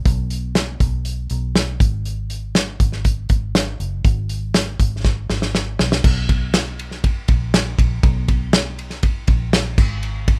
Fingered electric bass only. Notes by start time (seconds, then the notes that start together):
0.05 B1
0.80 B1
1.31 B1
1.80 G#1
2.80 G#1
3.30 G#1
3.80 F#1
4.05 G#1
4.80 G#1
5.30 G#1
5.80 B1
6.05 B1
7.29 A#1
7.79 A#1
8.04 B1
9.28 A#1
9.78 G#1